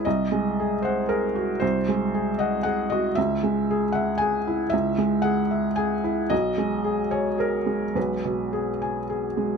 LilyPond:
\new Staff \with { instrumentName = "Felt piano" } { \time 3/4 \key gis \minor \tempo 4 = 115 << { dis''4. bis'8 ais'4 | bis'4. dis''8 fis''8 dis''8 | e''4. fis''8 gis''4 | e''4 fis''4 gis''8 r8 |
dis''4. cis''8 ais'4 | b'2 r4 | } \\ { bis,,8 gis8 gis'8 fis''8 gis'8 fis'8 | bis,,8 gis8 gis'8 fis''8 gis'8 fis'8 | cis,8 gis8 gis'8 e''8 gis'8 e'8 | cis,8 gis8 gis'8 e''8 gis'8 e'8 |
b,,8 gis8 gis'8 gis''8 gis'8 gis8 | b,,8 b,8 gis'8 gis''8 gis'8 gis8 | } >> }